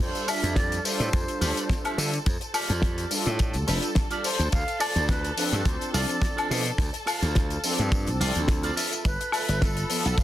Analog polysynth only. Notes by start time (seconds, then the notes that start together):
0.00 G3 D4 F4 A4
0.84 G3 D4 F4 A4
1.97 G3 D4 F4 A4
3.10 G3 D4 F4 A4
4.10 G3 D4 F4 A4
5.36 F3 C4 D4 A4
6.50 F3 C4 D4 A4
7.63 F3 C4 D4 A4
8.20 F3 C4 D4 A4
9.89 F3 B3 A4